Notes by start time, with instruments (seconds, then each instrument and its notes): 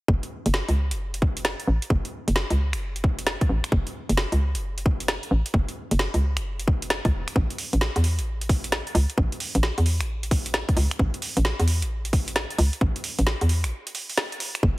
0.08 fm bass F#1, kick
0.23 closed hi-hat
0.46 fm bass F#1, closed hi-hat
0.54 snare
0.69 fm bass C#2, closed hi-hat
0.91 fm bass F#1, closed hi-hat
1.14 closed hi-hat
1.22 kick
1.37 closed hi-hat
1.45 snare
1.60 closed hi-hat
1.67 fm bass A1
1.82 closed hi-hat
1.90 fm bass F#1, kick
2.05 closed hi-hat
2.28 fm bass F#1, closed hi-hat
2.36 snare
2.50 fm bass C#2, closed hi-hat
2.73 fm bass F#1, finger snap, closed hi-hat
2.96 closed hi-hat
3.04 kick
3.19 closed hi-hat
3.27 snare
3.41 kick, closed hi-hat
3.49 fm bass A1
3.64 finger snap, closed hi-hat
3.72 fm bass F#1, kick
3.87 closed hi-hat
4.09 fm bass F#1, closed hi-hat
4.17 snare
4.32 fm bass C#2, closed hi-hat
4.55 fm bass F#1, closed hi-hat
4.78 closed hi-hat
4.86 kick
5.00 closed hi-hat
5.08 snare
5.23 closed hi-hat
5.31 fm bass A1
5.46 closed hi-hat
5.54 fm bass F#1, kick
5.69 closed hi-hat
5.91 fm bass F#1, closed hi-hat
5.99 snare
6.14 fm bass C#2, closed hi-hat
6.37 fm bass F#1, finger snap, closed hi-hat
6.60 closed hi-hat
6.68 kick
6.82 closed hi-hat
6.90 snare
7.05 fm bass C#2, kick, closed hi-hat
7.13 fm bass E1
7.28 finger snap, closed hi-hat
7.36 fm bass A1, kick
7.50 closed hi-hat
7.58 open hi-hat
7.73 fm bass A1, closed hi-hat
7.81 snare
7.96 fm bass E2, closed hi-hat
8.04 open hi-hat
8.19 fm bass A1, closed hi-hat
8.41 closed hi-hat
8.49 kick, open hi-hat
8.64 closed hi-hat
8.72 snare
8.87 closed hi-hat
8.95 fm bass C#2, open hi-hat
9.10 closed hi-hat
9.18 fm bass A1, kick
9.32 closed hi-hat
9.40 open hi-hat
9.55 fm bass A1, closed hi-hat
9.63 snare
9.78 fm bass E2, closed hi-hat
9.86 open hi-hat
10.00 fm bass A1, finger snap, closed hi-hat
10.23 closed hi-hat
10.31 kick, open hi-hat
10.46 closed hi-hat
10.54 snare
10.69 kick, closed hi-hat
10.77 fm bass C#2, open hi-hat
10.91 finger snap, closed hi-hat
10.99 fm bass A1, kick
11.14 closed hi-hat
11.22 open hi-hat
11.37 fm bass A1, closed hi-hat
11.45 snare
11.59 fm bass E2, closed hi-hat
11.68 open hi-hat
11.82 fm bass A1, closed hi-hat
12.05 closed hi-hat
12.13 kick, open hi-hat
12.28 closed hi-hat
12.36 snare
12.50 closed hi-hat
12.58 fm bass C#2, open hi-hat
12.73 closed hi-hat
12.81 fm bass A1, kick
12.96 closed hi-hat
13.04 open hi-hat
13.19 fm bass A1, closed hi-hat
13.27 snare
13.41 fm bass E2, closed hi-hat
13.49 open hi-hat
13.64 fm bass A1, finger snap, closed hi-hat
13.87 closed hi-hat
13.95 open hi-hat
14.10 open hi-hat
14.18 snare
14.32 closed hi-hat
14.40 open hi-hat
14.55 finger snap, closed hi-hat
14.63 fm bass F#1, kick